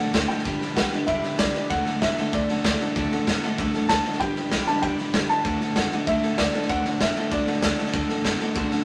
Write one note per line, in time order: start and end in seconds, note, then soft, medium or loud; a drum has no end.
0.00 0.11 D3 medium
0.00 0.11 A3 medium
0.00 0.13 D4 soft
0.00 0.14 F#4 medium
0.00 0.14 A4 medium
0.00 0.31 F#5 medium
0.13 0.26 D2 medium
0.13 0.28 D3 medium
0.13 0.29 A3 medium
0.13 0.28 A3 medium
0.13 0.29 D4 medium
0.13 0.29 F#4 medium
0.13 0.27 A4 medium
0.13 kick medium
0.13 snare loud
0.13 hi-hat pedal medium
0.28 0.44 D3 medium
0.28 0.44 A3 medium
0.28 0.43 D4 soft
0.28 0.45 F#4 medium
0.28 0.45 A4 medium
0.28 0.73 G5 loud
0.28 snare soft
0.38 snare soft
0.44 0.57 G1 medium
0.44 0.74 G2 medium
0.44 0.74 D3 medium
0.44 0.60 G3 medium
0.44 0.60 D4 medium
0.44 0.59 G4 medium
0.44 0.58 B4 medium
0.44 kick loud
0.44 snare soft
0.59 0.75 D4 soft
0.59 0.75 G4 soft
0.59 0.76 B4 medium
0.59 snare soft
0.75 0.89 B1 loud
0.75 0.91 G2 medium
0.75 0.92 E3 medium
0.75 0.91 G3 medium
0.75 0.90 D4 medium
0.75 0.90 G4 medium
0.75 0.89 B4 medium
0.75 1.05 F#5 medium
0.75 kick medium
0.75 snare loud
0.75 hi-hat pedal medium
0.90 1.07 G2 medium
0.90 1.07 D3 medium
0.90 1.06 D4 medium
0.90 1.06 G4 soft
0.90 1.07 B4 medium
0.90 snare soft
1.06 1.20 E1 loud
1.06 1.37 G2 medium
1.06 1.37 D3 loud
1.06 1.23 G3 medium
1.06 1.22 D4 medium
1.06 1.21 G4 medium
1.06 1.21 B4 medium
1.06 1.39 E5 medium
1.06 kick loud
1.06 snare soft
1.22 1.36 D4 soft
1.22 1.37 G4 soft
1.22 1.38 B4 medium
1.22 snare soft
1.37 1.51 C2 loud
1.37 1.54 G2 medium
1.37 1.54 D3 medium
1.37 1.54 G3 medium
1.37 1.53 D4 medium
1.37 1.53 G4 medium
1.37 1.51 B4 medium
1.37 1.71 D5 medium
1.37 kick loud
1.37 snare loud
1.37 hi-hat pedal medium
1.52 1.69 D4 soft
1.52 1.70 G4 medium
1.52 1.69 B4 medium
1.52 snare soft
1.56 1.70 G2 medium
1.56 1.70 D3 medium
1.69 1.83 D2 medium
1.69 1.86 D3 medium
1.69 1.99 D3 medium
1.69 1.86 A3 medium
1.69 2.00 A3 medium
1.69 1.86 D4 medium
1.69 1.85 F#4 medium
1.69 1.84 A4 medium
1.69 1.99 F#5 loud
1.69 kick loud
1.69 snare soft
1.85 2.00 D4 soft
1.85 2.01 F#4 soft
1.85 2.01 A4 medium
1.85 snare soft
2.01 2.14 F#2 loud
2.01 2.16 D3 medium
2.01 2.17 A3 medium
2.01 2.17 B3 medium
2.01 2.17 D4 medium
2.01 2.18 F#4 medium
2.01 2.16 A4 medium
2.01 2.34 E5 medium
2.01 kick medium
2.01 snare medium
2.01 hi-hat pedal medium
2.17 2.32 D3 medium
2.17 2.32 A3 medium
2.17 2.32 D4 soft
2.17 2.33 F#4 medium
2.17 2.33 A4 medium
2.17 muted upright bass stroke medium
2.17 snare soft
2.33 2.45 C2 loud
2.33 2.49 D3 medium
2.33 2.61 D3 medium
2.33 2.49 A3 medium
2.33 2.62 A3 loud
2.33 2.49 D4 medium
2.33 2.49 F#4 medium
2.33 2.48 A4 medium
2.33 2.63 D5 medium
2.33 kick loud
2.33 snare soft
2.49 2.64 D4 soft
2.49 2.64 F#4 soft
2.49 2.65 A4 medium
2.49 snare soft
2.64 2.77 D2 medium
2.64 2.79 D3 medium
2.64 2.80 A3 medium
2.64 2.79 A3 medium
2.64 2.80 D4 medium
2.64 2.80 F#4 medium
2.64 2.79 A4 medium
2.64 3.08 D5 medium
2.64 kick loud
2.64 snare loud
2.64 hi-hat pedal medium
2.80 2.95 D3 medium
2.80 2.95 A3 medium
2.80 2.96 D4 soft
2.80 2.96 F#4 soft
2.80 2.96 A4 medium
2.80 snare soft
2.96 3.08 D2 medium
2.96 3.11 D3 medium
2.96 3.24 D3 medium
2.96 3.12 A3 medium
2.96 3.25 A3 medium
2.96 3.12 D4 medium
2.96 3.12 F#4 medium
2.96 3.10 A4 medium
2.96 kick loud
2.96 snare soft
3.11 3.27 D4 medium
3.11 3.27 F#4 medium
3.11 3.27 A4 medium
3.11 snare soft
3.27 3.39 F#2 medium
3.27 3.41 D3 medium
3.27 3.43 A3 medium
3.27 3.42 B3 medium
3.27 3.43 D4 medium
3.27 3.43 F#4 medium
3.27 3.42 A4 medium
3.27 kick medium
3.27 snare medium
3.27 hi-hat pedal medium
3.43 3.57 D3 medium
3.43 3.57 A3 medium
3.43 3.58 D4 medium
3.43 3.58 F#4 medium
3.43 3.58 A4 medium
3.43 snare soft
3.58 3.70 C2 loud
3.58 3.74 D3 medium
3.58 3.87 D3 medium
3.58 3.74 A3 medium
3.58 3.87 A3 medium
3.58 3.75 D4 medium
3.58 3.74 F#4 medium
3.58 3.73 A4 loud
3.58 kick loud
3.58 snare soft
3.74 3.89 D4 medium
3.74 3.90 F#4 medium
3.74 3.90 A4 medium
3.74 snare soft
3.89 4.02 D2 medium
3.89 4.04 D3 medium
3.89 4.05 A3 medium
3.89 4.04 A3 loud
3.89 4.06 D4 medium
3.89 4.06 F#4 medium
3.89 4.04 A4 medium
3.89 4.21 A5 loud
3.89 kick medium
3.89 snare loud
3.89 hi-hat pedal medium
4.05 4.20 D3 medium
4.05 4.20 A3 medium
4.05 4.20 D4 soft
4.05 4.22 F#4 medium
4.05 4.21 A4 medium
4.05 snare soft
4.13 snare soft
4.20 4.33 G1 medium
4.20 4.49 G2 medium
4.20 4.49 D3 medium
4.20 4.37 G3 medium
4.20 4.37 D4 medium
4.20 4.36 G4 medium
4.20 4.35 B4 medium
4.20 4.68 G5 loud
4.20 kick loud
4.20 snare soft
4.36 4.51 D4 soft
4.36 4.52 G4 soft
4.36 4.52 B4 medium
4.36 snare soft
4.51 4.64 B1 loud
4.51 4.66 G2 medium
4.51 4.67 E3 medium
4.51 4.67 G3 medium
4.51 4.68 D4 medium
4.51 4.67 G4 medium
4.51 4.66 B4 medium
4.51 kick medium
4.51 snare medium
4.51 hi-hat pedal medium
4.67 4.82 G2 medium
4.67 4.82 D3 medium
4.67 4.82 D4 soft
4.67 4.83 G4 soft
4.67 4.83 B4 medium
4.67 4.83 A5 medium
4.67 muted upright bass stroke medium
4.67 snare soft
4.82 4.95 E1 medium
4.82 5.11 G2 medium
4.82 5.12 D3 medium
4.82 4.98 G3 medium
4.82 4.99 D4 medium
4.82 4.98 G4 medium
4.82 4.97 B4 medium
4.82 5.26 G5 loud
4.82 kick loud
4.82 snare soft
4.98 5.14 D4 soft
4.98 5.14 G4 medium
4.98 5.14 B4 medium
4.98 snare soft
5.14 5.26 G1 loud
5.14 5.28 G2 medium
5.14 5.29 D3 loud
5.14 5.30 G3 medium
5.14 5.30 D4 medium
5.14 5.30 G4 medium
5.14 5.28 B4 medium
5.14 kick medium
5.14 snare loud
5.14 hi-hat pedal medium
5.29 5.44 G2 medium
5.29 5.44 D3 medium
5.29 5.44 D4 soft
5.29 5.46 G4 soft
5.29 5.45 B4 medium
5.29 5.78 A5 loud
5.29 muted upright bass stroke medium
5.29 snare soft
5.44 5.57 D2 medium
5.44 5.61 D3 medium
5.44 5.74 D3 medium
5.44 5.61 A3 medium
5.44 5.74 A3 medium
5.44 5.61 D4 medium
5.44 5.61 F#4 medium
5.44 5.60 A4 medium
5.44 kick loud
5.44 snare soft
5.61 5.76 D4 soft
5.61 5.76 F#4 soft
5.61 5.77 A4 medium
5.61 snare soft
5.76 5.88 F#2 medium
5.76 5.90 D3 medium
5.76 5.92 A3 medium
5.76 5.91 B3 medium
5.76 5.92 D4 medium
5.76 5.92 F#4 medium
5.76 5.91 A4 medium
5.76 6.09 F#5 medium
5.76 kick medium
5.76 snare loud
5.76 hi-hat pedal medium
5.92 6.06 D3 medium
5.92 6.07 A3 medium
5.92 6.08 D4 soft
5.92 6.08 F#4 medium
5.92 6.08 A4 medium
5.92 muted upright bass stroke medium
5.92 snare soft
6.07 6.19 C2 medium
6.07 6.36 D3 medium
6.07 6.23 D3 medium
6.07 6.23 A3 medium
6.07 6.36 A3 loud
6.07 6.24 D4 medium
6.07 6.23 F#4 medium
6.07 6.23 A4 medium
6.07 6.39 E5 medium
6.07 kick loud
6.07 snare soft
6.23 6.39 D4 soft
6.23 6.39 F#4 soft
6.23 6.39 A4 medium
6.23 muted upright bass stroke medium
6.23 snare soft
6.38 6.50 D2 medium
6.38 6.53 D3 medium
6.38 6.54 A3 medium
6.38 6.53 A3 medium
6.38 6.55 D4 medium
6.38 6.54 F#4 medium
6.38 6.53 A4 medium
6.38 6.71 D5 medium
6.38 kick medium
6.38 snare loud
6.38 hi-hat pedal medium
6.53 6.68 D3 medium
6.53 6.69 A3 medium
6.53 6.69 D4 soft
6.53 6.69 F#4 medium
6.53 6.70 A4 medium
6.53 snare soft
6.62 snare soft
6.69 6.82 D2 medium
6.69 6.85 D3 medium
6.69 6.98 D3 medium
6.69 6.86 A3 medium
6.69 6.98 A3 medium
6.69 6.86 D4 medium
6.69 6.85 F#4 medium
6.69 6.84 A4 medium
6.69 6.90 F#5 loud
6.69 kick loud
6.69 snare soft
6.85 7.00 D4 soft
6.85 7.01 F#4 medium
6.85 7.01 A4 soft
6.85 snare soft
6.91 7.00 F#5 medium
7.00 7.12 F#2 loud
7.00 7.15 D3 medium
7.00 7.17 A3 medium
7.00 7.15 B3 medium
7.00 7.17 D4 medium
7.00 7.16 F#4 medium
7.00 7.15 A4 medium
7.00 7.33 E5 medium
7.00 kick medium
7.00 snare loud
7.00 hi-hat pedal medium
7.16 7.30 D3 medium
7.16 7.31 A3 medium
7.16 7.31 D4 soft
7.16 7.31 F#4 medium
7.16 7.31 A4 medium
7.16 snare soft
7.31 7.44 C2 medium
7.31 7.47 D3 medium
7.31 7.60 D3 medium
7.31 7.47 A3 medium
7.31 7.60 A3 medium
7.31 7.47 D4 medium
7.31 7.46 F#4 medium
7.31 7.45 A4 medium
7.31 7.61 D5 medium
7.31 kick loud
7.31 snare soft
7.46 7.61 D4 soft
7.46 7.63 F#4 medium
7.46 7.62 A4 medium
7.46 muted upright bass stroke medium
7.46 snare soft
7.62 7.75 D2 medium
7.62 7.77 D3 medium
7.62 7.78 A3 medium
7.62 7.77 A3 medium
7.62 7.78 D4 medium
7.62 7.77 F#4 medium
7.62 7.76 A4 medium
7.62 8.06 D5 medium
7.62 kick medium
7.62 snare loud
7.62 hi-hat pedal loud
7.78 7.93 D3 medium
7.78 7.93 A3 medium
7.78 7.93 D4 soft
7.78 7.93 F#4 medium
7.78 7.93 A4 medium
7.78 snare soft
7.86 snare soft
7.93 8.06 D2 medium
7.93 8.09 D3 medium
7.93 8.22 D3 medium
7.93 8.09 A3 medium
7.93 8.22 A3 loud
7.93 8.10 D4 medium
7.93 8.10 F#4 medium
7.93 8.08 A4 medium
7.93 kick loud
7.93 snare soft
8.09 8.24 D4 soft
8.09 8.25 F#4 medium
8.09 8.25 A4 medium
8.09 snare soft
8.24 8.37 F#2 medium
8.24 8.39 D3 medium
8.24 8.40 A3 medium
8.24 8.39 B3 medium
8.24 8.40 D4 medium
8.24 8.39 F#4 medium
8.24 8.38 A4 medium
8.24 kick medium
8.24 snare medium
8.24 hi-hat pedal medium
8.39 8.55 D3 medium
8.39 8.55 A3 medium
8.39 8.54 D4 soft
8.39 8.54 F#4 medium
8.39 8.55 A4 medium
8.39 snare soft
8.55 8.68 C2 medium
8.55 8.71 D3 medium
8.55 8.84 D3 medium
8.55 8.71 A3 medium
8.55 8.84 A3 medium
8.55 8.71 D4 loud
8.55 8.71 F#4 medium
8.55 8.70 A4 medium
8.55 kick loud
8.55 snare soft
8.71 8.84 D4 soft
8.71 8.84 F#4 medium
8.71 8.84 A4 medium
8.71 snare soft